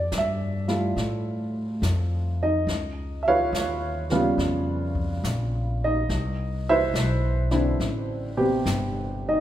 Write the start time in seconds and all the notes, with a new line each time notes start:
Already playing: D5 E5
0.12 G2, snare, hi-hat pedal
0.18 E5
0.68 G3 A3 E4 F4, snare
0.96 A2, brush sweep, snare
1.82 F2, snare, hi-hat pedal
2.43 D#4 D#5
2.67 C#2, brush sweep, snare
3.23 E5
3.28 F4 B4 C#5 F5
3.53 D#2, snare, hi-hat pedal
4.10 C#3 G3 B3 F4, snare
4.38 F2, brush sweep, snare
4.95 kick
5.24 A#1, snare, hi-hat pedal
5.84 D#4 D#5
6.09 C2, brush sweep, snare
6.69 E4 B4 C5 E5
6.94 B1, snare, hi-hat pedal
7.51 D3 C4 D4 E4, snare
7.80 A1, brush sweep, snare
8.37 C3 B3 C4 G4
8.66 G1, snare, hi-hat pedal
9.29 D#4 D#5